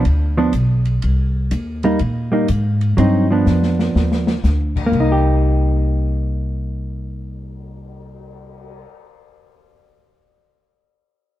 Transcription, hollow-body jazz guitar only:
0, 0, Header, 1, 2, 480
1, 0, Start_track
1, 0, Key_signature, -3, "minor"
1, 0, Tempo, 488242
1, 1001, Time_signature, 4, 2, 24, 8
1, 11208, End_track
2, 0, Start_track
2, 0, Title_t, "Hollow-body jazz guitar"
2, 0, Program_c, 0, 26
2, 369, Note_on_c, 0, 53, 57
2, 373, Note_on_c, 0, 59, 63
2, 376, Note_on_c, 0, 62, 61
2, 509, Note_off_c, 0, 53, 0
2, 511, Note_off_c, 0, 59, 0
2, 513, Note_off_c, 0, 62, 0
2, 1810, Note_on_c, 0, 55, 51
2, 1814, Note_on_c, 0, 58, 56
2, 1819, Note_on_c, 0, 63, 62
2, 1950, Note_off_c, 0, 55, 0
2, 1952, Note_off_c, 0, 58, 0
2, 1955, Note_off_c, 0, 63, 0
2, 2278, Note_on_c, 0, 55, 49
2, 2287, Note_on_c, 0, 58, 57
2, 2291, Note_on_c, 0, 63, 57
2, 2424, Note_off_c, 0, 55, 0
2, 2429, Note_off_c, 0, 58, 0
2, 2431, Note_off_c, 0, 63, 0
2, 2920, Note_on_c, 0, 54, 54
2, 2934, Note_on_c, 0, 60, 59
2, 2943, Note_on_c, 0, 63, 65
2, 3207, Note_off_c, 0, 54, 0
2, 3214, Note_off_c, 0, 60, 0
2, 3219, Note_off_c, 0, 63, 0
2, 3249, Note_on_c, 0, 53, 53
2, 3263, Note_on_c, 0, 59, 57
2, 3263, Note_on_c, 0, 62, 59
2, 4269, Note_off_c, 0, 53, 0
2, 4276, Note_off_c, 0, 59, 0
2, 4276, Note_off_c, 0, 62, 0
2, 4783, Note_on_c, 0, 58, 54
2, 4918, Note_on_c, 0, 63, 52
2, 5032, Note_on_c, 0, 67, 55
2, 8659, Note_off_c, 0, 58, 0
2, 8794, Note_off_c, 0, 63, 0
2, 8908, Note_off_c, 0, 67, 0
2, 11208, End_track
0, 0, End_of_file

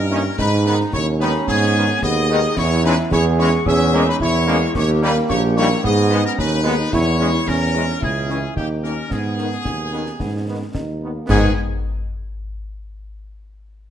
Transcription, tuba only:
0, 0, Header, 1, 2, 480
1, 0, Start_track
1, 0, Key_signature, 5, "minor"
1, 0, Tempo, 544959
1, 344, Time_signature, 2, 2, 24, 8
1, 12245, End_track
2, 0, Start_track
2, 0, Title_t, "Tuba"
2, 0, Program_c, 0, 58
2, 0, Note_on_c, 0, 43, 106
2, 263, Note_off_c, 0, 43, 0
2, 337, Note_on_c, 0, 44, 127
2, 740, Note_off_c, 0, 44, 0
2, 817, Note_on_c, 0, 39, 117
2, 1220, Note_off_c, 0, 39, 0
2, 1301, Note_on_c, 0, 44, 123
2, 1702, Note_off_c, 0, 44, 0
2, 1779, Note_on_c, 0, 39, 110
2, 2181, Note_off_c, 0, 39, 0
2, 2254, Note_on_c, 0, 40, 127
2, 2659, Note_off_c, 0, 40, 0
2, 2735, Note_on_c, 0, 40, 127
2, 3139, Note_off_c, 0, 40, 0
2, 3221, Note_on_c, 0, 40, 127
2, 3623, Note_off_c, 0, 40, 0
2, 3696, Note_on_c, 0, 40, 119
2, 4100, Note_off_c, 0, 40, 0
2, 4181, Note_on_c, 0, 39, 127
2, 4583, Note_off_c, 0, 39, 0
2, 4665, Note_on_c, 0, 34, 127
2, 5065, Note_off_c, 0, 34, 0
2, 5137, Note_on_c, 0, 44, 126
2, 5501, Note_off_c, 0, 44, 0
2, 5622, Note_on_c, 0, 39, 113
2, 6023, Note_off_c, 0, 39, 0
2, 6098, Note_on_c, 0, 40, 121
2, 6501, Note_off_c, 0, 40, 0
2, 6569, Note_on_c, 0, 40, 110
2, 6977, Note_off_c, 0, 40, 0
2, 7063, Note_on_c, 0, 37, 99
2, 7464, Note_off_c, 0, 37, 0
2, 7534, Note_on_c, 0, 39, 92
2, 7940, Note_off_c, 0, 39, 0
2, 8013, Note_on_c, 0, 44, 91
2, 8419, Note_off_c, 0, 44, 0
2, 8501, Note_on_c, 0, 39, 78
2, 8903, Note_off_c, 0, 39, 0
2, 8983, Note_on_c, 0, 44, 93
2, 9384, Note_off_c, 0, 44, 0
2, 9462, Note_on_c, 0, 39, 73
2, 9863, Note_off_c, 0, 39, 0
2, 9941, Note_on_c, 0, 44, 121
2, 10143, Note_off_c, 0, 44, 0
2, 12245, End_track
0, 0, End_of_file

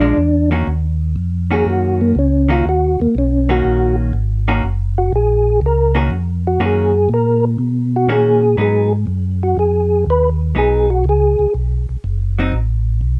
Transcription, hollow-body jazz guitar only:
0, 0, Header, 1, 2, 480
1, 0, Start_track
1, 0, Key_signature, -6, "minor"
1, 0, Tempo, 494234
1, 655, Time_signature, 4, 2, 24, 8
1, 12816, End_track
2, 0, Start_track
2, 0, Title_t, "Hollow-body jazz guitar"
2, 0, Program_c, 0, 26
2, 5, Note_on_c, 0, 53, 57
2, 13, Note_on_c, 0, 56, 73
2, 15, Note_on_c, 0, 62, 62
2, 150, Note_off_c, 0, 53, 0
2, 154, Note_off_c, 0, 56, 0
2, 155, Note_off_c, 0, 62, 0
2, 495, Note_on_c, 0, 51, 66
2, 502, Note_on_c, 0, 58, 64
2, 508, Note_on_c, 0, 61, 63
2, 508, Note_on_c, 0, 66, 67
2, 635, Note_off_c, 0, 51, 0
2, 639, Note_off_c, 0, 58, 0
2, 641, Note_off_c, 0, 66, 0
2, 642, Note_off_c, 0, 61, 0
2, 1463, Note_on_c, 0, 51, 62
2, 1468, Note_on_c, 0, 58, 63
2, 1470, Note_on_c, 0, 61, 66
2, 1473, Note_on_c, 0, 66, 62
2, 2064, Note_off_c, 0, 51, 0
2, 2066, Note_off_c, 0, 58, 0
2, 2067, Note_off_c, 0, 61, 0
2, 2069, Note_off_c, 0, 66, 0
2, 2414, Note_on_c, 0, 51, 59
2, 2423, Note_on_c, 0, 58, 62
2, 2427, Note_on_c, 0, 61, 60
2, 2430, Note_on_c, 0, 66, 73
2, 2554, Note_off_c, 0, 51, 0
2, 2559, Note_off_c, 0, 58, 0
2, 2561, Note_off_c, 0, 61, 0
2, 2562, Note_off_c, 0, 66, 0
2, 3391, Note_on_c, 0, 51, 76
2, 3395, Note_on_c, 0, 58, 68
2, 3399, Note_on_c, 0, 61, 65
2, 3402, Note_on_c, 0, 66, 66
2, 3988, Note_off_c, 0, 51, 0
2, 3990, Note_off_c, 0, 58, 0
2, 3992, Note_off_c, 0, 61, 0
2, 3994, Note_off_c, 0, 66, 0
2, 4350, Note_on_c, 0, 51, 64
2, 4353, Note_on_c, 0, 58, 73
2, 4354, Note_on_c, 0, 61, 71
2, 4360, Note_on_c, 0, 66, 75
2, 4482, Note_off_c, 0, 51, 0
2, 4484, Note_off_c, 0, 58, 0
2, 4485, Note_off_c, 0, 61, 0
2, 4488, Note_off_c, 0, 66, 0
2, 5776, Note_on_c, 0, 58, 65
2, 5777, Note_on_c, 0, 51, 62
2, 5784, Note_on_c, 0, 61, 75
2, 5789, Note_on_c, 0, 66, 77
2, 5916, Note_off_c, 0, 58, 0
2, 5917, Note_off_c, 0, 51, 0
2, 5920, Note_off_c, 0, 61, 0
2, 5923, Note_off_c, 0, 66, 0
2, 6411, Note_on_c, 0, 51, 48
2, 6411, Note_on_c, 0, 58, 60
2, 6416, Note_on_c, 0, 66, 64
2, 6417, Note_on_c, 0, 61, 60
2, 6710, Note_off_c, 0, 51, 0
2, 6710, Note_off_c, 0, 58, 0
2, 6712, Note_off_c, 0, 66, 0
2, 6713, Note_off_c, 0, 61, 0
2, 7853, Note_on_c, 0, 51, 50
2, 7858, Note_on_c, 0, 58, 50
2, 7860, Note_on_c, 0, 66, 60
2, 7861, Note_on_c, 0, 61, 60
2, 8151, Note_off_c, 0, 51, 0
2, 8153, Note_off_c, 0, 58, 0
2, 8155, Note_off_c, 0, 61, 0
2, 8155, Note_off_c, 0, 66, 0
2, 8327, Note_on_c, 0, 54, 49
2, 8334, Note_on_c, 0, 59, 54
2, 8336, Note_on_c, 0, 63, 57
2, 8628, Note_off_c, 0, 54, 0
2, 8631, Note_off_c, 0, 59, 0
2, 8633, Note_off_c, 0, 63, 0
2, 10244, Note_on_c, 0, 54, 44
2, 10252, Note_on_c, 0, 59, 50
2, 10256, Note_on_c, 0, 63, 57
2, 10547, Note_off_c, 0, 54, 0
2, 10550, Note_off_c, 0, 59, 0
2, 10552, Note_off_c, 0, 63, 0
2, 12029, Note_on_c, 0, 54, 63
2, 12039, Note_on_c, 0, 60, 71
2, 12042, Note_on_c, 0, 63, 73
2, 12162, Note_off_c, 0, 54, 0
2, 12167, Note_off_c, 0, 60, 0
2, 12169, Note_off_c, 0, 63, 0
2, 12816, End_track
0, 0, End_of_file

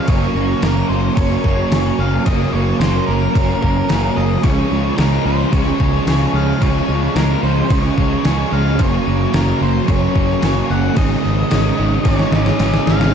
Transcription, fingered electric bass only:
0, 0, Header, 1, 2, 480
1, 0, Start_track
1, 0, Key_signature, -5, "major"
1, 0, Tempo, 543971
1, 77, Time_signature, 4, 2, 24, 8
1, 11596, End_track
2, 0, Start_track
2, 0, Title_t, "Fingered electric bass"
2, 0, Program_c, 0, 33
2, 71, Note_on_c, 0, 30, 84
2, 232, Note_off_c, 0, 30, 0
2, 307, Note_on_c, 0, 30, 77
2, 469, Note_off_c, 0, 30, 0
2, 553, Note_on_c, 0, 30, 93
2, 713, Note_off_c, 0, 30, 0
2, 792, Note_on_c, 0, 30, 85
2, 953, Note_off_c, 0, 30, 0
2, 1035, Note_on_c, 0, 30, 91
2, 1195, Note_off_c, 0, 30, 0
2, 1273, Note_on_c, 0, 30, 93
2, 1434, Note_off_c, 0, 30, 0
2, 1514, Note_on_c, 0, 30, 87
2, 1675, Note_off_c, 0, 30, 0
2, 1753, Note_on_c, 0, 30, 88
2, 1914, Note_off_c, 0, 30, 0
2, 1998, Note_on_c, 0, 30, 80
2, 2157, Note_off_c, 0, 30, 0
2, 2236, Note_on_c, 0, 30, 77
2, 2396, Note_off_c, 0, 30, 0
2, 2470, Note_on_c, 0, 30, 91
2, 2632, Note_off_c, 0, 30, 0
2, 2721, Note_on_c, 0, 30, 86
2, 2880, Note_off_c, 0, 30, 0
2, 2960, Note_on_c, 0, 30, 83
2, 3120, Note_off_c, 0, 30, 0
2, 3199, Note_on_c, 0, 30, 89
2, 3359, Note_off_c, 0, 30, 0
2, 3449, Note_on_c, 0, 30, 86
2, 3605, Note_off_c, 0, 30, 0
2, 3683, Note_on_c, 0, 30, 82
2, 3842, Note_off_c, 0, 30, 0
2, 3917, Note_on_c, 0, 37, 82
2, 4078, Note_off_c, 0, 37, 0
2, 4162, Note_on_c, 0, 37, 80
2, 4322, Note_off_c, 0, 37, 0
2, 4397, Note_on_c, 0, 37, 86
2, 4558, Note_off_c, 0, 37, 0
2, 4636, Note_on_c, 0, 37, 86
2, 4798, Note_off_c, 0, 37, 0
2, 4876, Note_on_c, 0, 37, 88
2, 5037, Note_off_c, 0, 37, 0
2, 5117, Note_on_c, 0, 37, 88
2, 5278, Note_off_c, 0, 37, 0
2, 5354, Note_on_c, 0, 37, 88
2, 5516, Note_off_c, 0, 37, 0
2, 5589, Note_on_c, 0, 37, 83
2, 5752, Note_off_c, 0, 37, 0
2, 5839, Note_on_c, 0, 37, 90
2, 5999, Note_off_c, 0, 37, 0
2, 6078, Note_on_c, 0, 37, 78
2, 6238, Note_off_c, 0, 37, 0
2, 6314, Note_on_c, 0, 37, 92
2, 6476, Note_off_c, 0, 37, 0
2, 6556, Note_on_c, 0, 37, 88
2, 6717, Note_off_c, 0, 37, 0
2, 6797, Note_on_c, 0, 37, 86
2, 6958, Note_off_c, 0, 37, 0
2, 7043, Note_on_c, 0, 37, 83
2, 7202, Note_off_c, 0, 37, 0
2, 7283, Note_on_c, 0, 37, 83
2, 7442, Note_off_c, 0, 37, 0
2, 7520, Note_on_c, 0, 37, 84
2, 7759, Note_on_c, 0, 30, 91
2, 7773, Note_off_c, 0, 37, 0
2, 7919, Note_off_c, 0, 30, 0
2, 8007, Note_on_c, 0, 30, 84
2, 8164, Note_off_c, 0, 30, 0
2, 8245, Note_on_c, 0, 30, 84
2, 8402, Note_off_c, 0, 30, 0
2, 8482, Note_on_c, 0, 30, 82
2, 8640, Note_off_c, 0, 30, 0
2, 8723, Note_on_c, 0, 30, 93
2, 8880, Note_off_c, 0, 30, 0
2, 8964, Note_on_c, 0, 30, 90
2, 9120, Note_off_c, 0, 30, 0
2, 9200, Note_on_c, 0, 30, 90
2, 9358, Note_off_c, 0, 30, 0
2, 9443, Note_on_c, 0, 30, 86
2, 9599, Note_off_c, 0, 30, 0
2, 9677, Note_on_c, 0, 32, 85
2, 9835, Note_off_c, 0, 32, 0
2, 9931, Note_on_c, 0, 32, 78
2, 10084, Note_off_c, 0, 32, 0
2, 10169, Note_on_c, 0, 32, 87
2, 10323, Note_off_c, 0, 32, 0
2, 10407, Note_on_c, 0, 32, 89
2, 10561, Note_off_c, 0, 32, 0
2, 10636, Note_on_c, 0, 32, 83
2, 10794, Note_off_c, 0, 32, 0
2, 10871, Note_on_c, 0, 32, 85
2, 11030, Note_off_c, 0, 32, 0
2, 11116, Note_on_c, 0, 32, 94
2, 11273, Note_off_c, 0, 32, 0
2, 11354, Note_on_c, 0, 32, 86
2, 11590, Note_off_c, 0, 32, 0
2, 11596, End_track
0, 0, End_of_file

